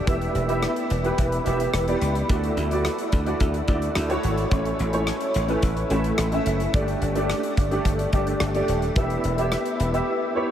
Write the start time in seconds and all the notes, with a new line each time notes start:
0.06 E1 B3 E4 G4 E5, kick, closed hi-hat
0.21 closed hi-hat
0.35 E1, closed hi-hat
0.48 B3 E4 G4 E5, closed hi-hat
0.62 cross-stick, closed hi-hat
0.76 closed hi-hat
0.90 E1, closed hi-hat
1.03 B3 E4 G4 B4, closed hi-hat
1.18 E1, kick, closed hi-hat
1.32 closed hi-hat
1.45 E1 B3 E4 G4 E5, closed hi-hat
1.60 closed hi-hat
1.73 E1, cross-stick, closed hi-hat
1.87 B3 E4 G4 D5, closed hi-hat
2.01 C#2, closed hi-hat
2.15 closed hi-hat
2.28 D2 A3 E4 F#4 D5, kick, closed hi-hat
2.44 closed hi-hat
2.57 D2, closed hi-hat
2.70 A3 E4 F#4 D5, closed hi-hat
2.85 cross-stick, closed hi-hat
2.98 closed hi-hat
3.12 D2, kick, closed hi-hat
3.26 A3 E4 F#4 D5, closed hi-hat
3.40 D2, kick, closed hi-hat
3.54 closed hi-hat
3.67 D2 A3 E4 F#4 D5, kick, closed hi-hat
3.82 closed hi-hat
3.95 D2, cross-stick, closed hi-hat
4.09 A3 E4 F#4 C#5, closed hi-hat
4.23 G#1, closed hi-hat
4.38 closed hi-hat
4.51 A1 A3 C#4 E4 C#5, kick, closed hi-hat
4.65 closed hi-hat
4.79 A1, closed hi-hat
4.92 A3 C#4 E4 C#5, closed hi-hat
5.07 cross-stick, closed hi-hat
5.21 closed hi-hat
5.34 A1, closed hi-hat
5.48 A3 C#4 E4 B4, closed hi-hat
5.62 A1, kick, closed hi-hat
5.77 closed hi-hat
5.90 A1 A3 C#4 E4 E5, closed hi-hat
6.04 closed hi-hat
6.18 A1, cross-stick, closed hi-hat
6.32 A3 C#4 E4 E5, closed hi-hat
6.46 F#1, closed hi-hat
6.60 closed hi-hat
6.73 G1 A3 D4 G4 D5, kick, closed hi-hat
6.88 closed hi-hat
7.02 G1, closed hi-hat
7.15 A3 D4 G4 D5, closed hi-hat
7.29 cross-stick, closed hi-hat
7.43 closed hi-hat
7.57 G1, kick, closed hi-hat
7.70 A3 D4 G4 D5, closed hi-hat
7.85 G1, kick, closed hi-hat
7.99 closed hi-hat
8.12 G1 A3 D4 G4 D5, kick, closed hi-hat
8.27 closed hi-hat
8.40 G1, cross-stick, closed hi-hat
8.54 A3 D4 G4 D5, closed hi-hat
8.68 D#1, closed hi-hat
8.82 closed hi-hat
8.96 E1 B3 E4 G4 E5, kick, closed hi-hat
9.10 closed hi-hat
9.24 E1, closed hi-hat
9.37 B3 E4 G4 E5, closed hi-hat
9.52 cross-stick, closed hi-hat
9.66 closed hi-hat
9.80 E1, closed hi-hat
9.93 B3 E4 G4 E5, closed hi-hat
10.35 B3 E4 G4 C#5